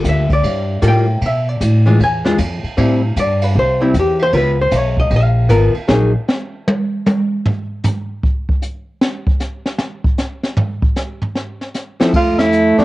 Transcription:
0.00 0.24 G3 medium
0.00 0.24 A#3 medium
0.00 0.25 F4 medium
0.04 0.42 D2 medium
0.04 kick soft
0.04 hi-hat pedal medium
0.04 ride medium
0.09 0.31 E5 medium
0.30 0.80 D5 medium
0.30 kick medium
0.30 ride medium
0.43 0.81 G2 medium
0.43 kick soft
0.43 ride medium
0.82 1.20 A2 medium
0.82 1.05 G3 medium
0.82 1.05 A#3 medium
0.82 1.05 F4 medium
0.82 0.87 A4 medium
0.82 kick soft
0.82 hi-hat pedal medium
0.82 ride medium
0.88 1.45 G5 medium
1.21 1.59 B2 medium
1.21 kick soft
1.21 ride medium
1.26 1.49 E5 medium
1.49 1.87 D5 medium
1.61 1.98 A2 medium
1.61 kick soft
1.61 hi-hat pedal medium
1.61 ride medium
1.86 1.98 E3 medium
1.86 1.98 G#3 medium
1.86 1.98 D4 medium
1.86 1.99 F4 medium
1.86 ride medium
2.00 2.37 E2 medium
2.00 kick soft
2.00 ride medium
2.04 2.62 G#5 loud
2.25 2.37 E3 medium
2.25 2.37 G#3 medium
2.25 2.37 D4 medium
2.25 2.37 F4 medium
2.25 snare medium
2.38 2.62 F2 loud
2.38 kick soft
2.38 hi-hat pedal medium
2.38 ride medium
2.63 muted upright bass stroke soft
2.63 ride soft
2.77 3.15 A2 medium
2.77 3.00 G3 medium
2.77 3.00 C4 medium
2.77 3.01 E4 medium
2.77 kick soft
2.77 ride medium
3.16 3.54 G2 medium
3.16 3.44 D5 medium
3.16 kick soft
3.16 hi-hat pedal medium
3.16 ride medium
3.42 3.56 B4 medium
3.42 ride medium
3.55 3.93 C2 medium
3.55 3.82 C5 loud
3.55 kick soft
3.81 3.93 G3 medium
3.81 3.93 C4 medium
3.81 3.94 E4 medium
3.94 4.32 E2 medium
3.94 kick soft
3.94 hi-hat pedal medium
3.94 ride medium
4.00 4.22 G4 medium
4.19 4.34 C5 loud
4.19 ride soft
4.33 4.71 C#2 medium
4.33 4.56 B3 medium
4.33 4.56 F4 medium
4.33 4.37 A#4 medium
4.33 kick soft
4.33 ride medium
4.37 4.60 B4 medium
4.61 4.76 C5 loud
4.71 5.10 B1 medium
4.71 kick soft
4.71 hi-hat pedal medium
4.71 ride medium
4.76 4.99 C#5 medium
4.97 5.12 D#5 loud
4.97 kick medium
5.10 5.49 A#1 medium
5.10 kick soft
5.10 ride medium
5.16 5.50 F5 medium
5.49 5.73 G#1 medium
5.49 5.72 B3 medium
5.49 5.73 F4 medium
5.49 5.73 A#4 medium
5.49 kick soft
5.49 hi-hat pedal soft
5.49 ride medium
5.74 muted upright bass stroke soft
5.74 ride soft
5.88 6.13 A#1 medium
5.88 6.11 F#3 medium
5.88 6.12 A#3 medium
5.88 6.12 D#4 medium
5.88 6.12 G#4 medium
5.88 snare loud
6.28 snare loud
6.28 hi-hat pedal medium
6.68 high tom loud
7.06 hi-hat pedal medium
7.06 high tom medium
7.45 floor tom loud
7.84 floor tom loud
7.84 hi-hat pedal medium
8.23 kick medium
8.49 kick medium
8.62 hi-hat pedal medium
9.01 snare loud
9.27 kick medium
9.40 snare soft
9.40 hi-hat pedal medium
9.66 snare medium
9.79 snare medium
10.05 kick medium
10.18 snare soft
10.18 hi-hat pedal medium
10.44 snare medium
10.57 floor tom loud
10.83 kick medium
10.96 snare medium
10.96 hi-hat pedal medium
11.22 floor tom medium
11.36 snare soft
11.61 snare soft
11.75 snare soft
11.75 hi-hat pedal medium
12.00 12.12 F3 medium
12.00 12.12 C4 medium
12.00 12.13 E4 medium
12.00 12.13 A4 medium
12.00 snare loud
12.14 12.74 F2 medium
12.14 12.85 A3 medium
12.14 12.41 F4 medium
12.14 brush sweep soft
12.14 kick medium
12.14 crash medium
12.39 12.78 E4 loud
12.39 snare medium
12.39 ride medium
12.52 hi-hat pedal medium
12.78 12.85 F3 medium
12.78 12.85 A3 medium
12.78 12.85 C4 medium
12.78 12.85 D4 medium
12.78 12.85 E4 medium
12.78 muted upright bass stroke soft
12.78 snare soft

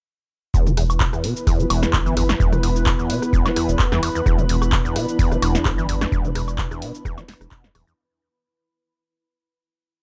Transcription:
0.54 1.06 E1 loud
0.54 0.68 E2 loud
0.54 7.94 B3 medium
0.54 7.98 E4 medium
0.54 4.22 E4 medium
0.54 7.94 B4 medium
0.54 kick loud
0.54 shaker medium
0.67 0.72 G3 loud
0.67 mid tom loud
0.67 shaker soft
0.77 0.84 E2 medium
0.77 cross-stick medium
0.77 open hi-hat loud
0.90 7.98 B4 medium
0.90 high woodblock medium
0.90 shaker medium
1.00 kick loud
1.00 clap loud
1.00 mid tom medium
1.00 shaker medium
1.13 1.25 E2 medium
1.13 cross-stick medium
1.13 shaker soft
1.24 1.34 B2 medium
1.24 open hi-hat loud
1.37 shaker medium
1.47 1.61 E2 loud
1.47 kick loud
1.47 cross-stick medium
1.47 open hi-hat medium
1.47 shaker medium
1.59 1.66 E1 medium
1.59 1.65 G3 loud
1.59 shaker soft
1.70 1.86 E1 loud
1.70 1.95 E2 medium
1.70 open hi-hat loud
1.70 high woodblock medium
1.83 cross-stick medium
1.83 snare medium
1.83 shaker medium
1.93 2.34 G1 medium
1.93 2.00 D2 loud
1.93 kick loud
1.93 clap loud
1.93 shaker medium
2.06 2.15 E3 medium
2.06 shaker soft
2.17 2.24 E2 medium
2.17 cross-stick medium
2.17 open hi-hat loud
2.29 2.35 E2 medium
2.29 7.98 B5 medium
2.29 snare medium
2.29 high woodblock medium
2.29 shaker medium
2.40 2.92 E1 loud
2.40 2.54 E2 loud
2.40 kick loud
2.40 shaker medium
2.52 2.58 G3 loud
2.52 cross-stick medium
2.52 mid tom loud
2.52 shaker soft
2.63 2.70 E2 medium
2.63 open hi-hat loud
2.76 shaker medium
2.86 kick loud
2.86 cross-stick medium
2.86 clap loud
2.86 mid tom medium
2.86 shaker medium
2.99 3.11 E2 medium
2.99 shaker soft
3.10 3.20 B2 medium
3.10 open hi-hat loud
3.22 cross-stick medium
3.22 shaker medium
3.33 3.41 E1 loud
3.33 3.47 E2 loud
3.33 kick loud
3.33 shaker medium
3.45 3.51 G3 loud
3.45 snare soft
3.45 high woodblock medium
3.45 shaker soft
3.56 3.81 E2 medium
3.56 cross-stick medium
3.56 open hi-hat loud
3.69 3.76 E1 loud
3.69 shaker medium
3.79 3.86 D2 loud
3.79 kick loud
3.79 clap loud
3.79 shaker medium
3.92 3.99 E2 medium
3.92 4.01 E3 medium
3.92 cross-stick medium
3.92 snare medium
3.92 shaker soft
4.03 4.10 E2 medium
4.03 open hi-hat loud
4.03 high woodblock medium
4.15 4.21 E2 medium
4.15 shaker medium
4.26 4.78 E1 loud
4.26 4.40 E2 loud
4.26 7.94 D4 medium
4.26 kick loud
4.26 cross-stick medium
4.26 shaker medium
4.38 4.45 G3 loud
4.38 mid tom loud
4.38 shaker soft
4.49 4.56 E2 medium
4.49 open hi-hat loud
4.62 cross-stick medium
4.62 high woodblock medium
4.62 shaker medium
4.72 kick loud
4.72 clap loud
4.72 mid tom loud
4.72 shaker medium
4.85 4.97 E2 medium
4.85 shaker soft
4.96 5.06 B2 medium
4.96 cross-stick medium
4.96 open hi-hat loud
5.09 shaker medium
5.19 5.33 E2 loud
5.19 kick loud
5.19 open hi-hat medium
5.19 shaker medium
5.32 5.38 E1 medium
5.32 5.38 G3 loud
5.32 cross-stick medium
5.32 shaker soft
5.42 5.58 E1 loud
5.42 5.67 E2 medium
5.42 open hi-hat loud
5.42 high woodblock medium
5.55 snare medium
5.55 shaker medium
5.65 6.06 G1 medium
5.65 5.72 D2 loud
5.65 kick loud
5.65 cross-stick medium
5.65 clap loud
5.65 shaker medium
5.78 5.87 E3 medium
5.78 shaker soft
5.89 5.96 E2 medium
5.89 open hi-hat loud
6.01 6.07 E2 medium
6.01 cross-stick medium
6.01 snare medium
6.01 high woodblock medium
6.01 shaker medium
6.12 6.64 E1 loud
6.12 6.26 E2 loud
6.12 kick loud
6.12 shaker medium
6.25 6.31 G3 loud
6.25 mid tom loud
6.25 shaker soft
6.35 6.42 E2 medium
6.35 cross-stick medium
6.35 open hi-hat loud
6.48 high woodblock medium
6.48 shaker medium
6.58 kick loud
6.58 clap loud
6.58 mid tom loud
6.58 shaker medium
6.71 6.83 E2 medium
6.71 cross-stick medium
6.71 shaker soft
6.82 6.92 B2 medium
6.82 open hi-hat loud
6.95 shaker medium
7.05 7.13 E1 loud
7.05 7.19 E2 loud
7.05 kick loud
7.05 cross-stick medium
7.05 shaker medium
7.17 7.24 G3 loud
7.17 snare soft
7.17 high woodblock medium
7.17 shaker soft
7.28 7.35 E1 loud
7.28 snare medium
7.28 open hi-hat loud
7.41 7.48 E1 loud
7.41 cross-stick medium
7.41 shaker medium
7.51 7.65 B2 medium
7.51 kick loud
7.51 clap loud
7.51 shaker medium
7.64 7.70 E2 medium
7.64 snare medium
7.64 shaker soft
7.75 7.83 D1 loud
7.75 7.85 E2 medium
7.75 cross-stick medium
7.75 open hi-hat loud
7.75 high woodblock medium
7.87 7.93 E2 medium
7.87 shaker medium

